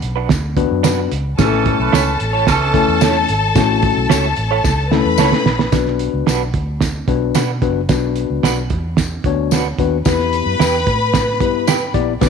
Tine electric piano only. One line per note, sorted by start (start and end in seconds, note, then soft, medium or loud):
0.57 1.10 B3 medium
0.57 1.10 D4 medium
0.57 1.10 F#4 medium
0.57 1.10 B4 medium
1.38 2.10 A3 medium
1.38 2.10 C#4 medium
1.38 2.10 E4 medium
1.38 1.45 G4 medium
1.45 2.13 A4 medium
2.74 3.28 A3 medium
2.74 3.28 C#4 medium
2.74 3.28 E4 medium
2.74 3.28 A4 medium
3.55 4.27 A3 medium
3.55 4.27 C#4 medium
3.55 4.27 E4 medium
3.55 4.27 F#4 medium
4.91 5.44 A3 medium
4.91 5.45 C#4 medium
4.91 5.45 E4 medium
4.91 5.45 A4 medium
5.72 6.43 B3 medium
5.72 6.44 D4 medium
5.72 6.43 F#4 medium
5.72 6.44 B4 medium
7.08 7.44 B3 medium
7.08 7.44 D4 medium
7.08 7.44 F#4 medium
7.08 7.44 B4 medium
7.62 7.80 B3 medium
7.62 7.80 D4 medium
7.62 7.80 F#4 medium
7.62 7.80 B4 medium
7.90 8.60 B3 medium
7.90 8.61 D4 medium
7.90 8.61 F#4 medium
7.90 8.61 B4 medium
9.26 9.61 B3 medium
9.26 9.61 D4 medium
9.26 9.60 F#4 medium
9.26 9.61 C#5 medium
9.79 9.97 B3 medium
9.79 9.97 D4 medium
9.79 9.97 F#4 medium
9.79 9.97 B4 medium
10.05 10.76 B3 medium
10.05 10.76 E4 medium
10.05 10.77 G4 medium
10.05 10.76 B4 medium
11.40 11.76 B3 medium
11.40 11.76 E4 medium
11.40 11.76 G4 medium
11.40 11.76 B4 medium
11.94 12.12 B3 medium
11.94 12.12 E4 medium
11.94 12.12 G4 medium
11.94 12.12 D5 medium
12.21 12.29 B3 medium
12.21 12.29 D4 medium
12.21 12.29 F#4 medium
12.21 12.29 B4 medium